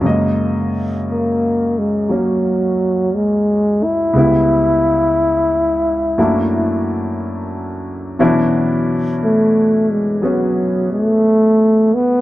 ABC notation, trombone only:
X:1
M:4/4
L:1/8
Q:"Swing" 1/4=59
K:Blyd
V:1 name="Trombone" clef=bass
z2 A, G, F,2 G, =E- | =E4- E z3 | z2 =A, G, F, A,2 B, |]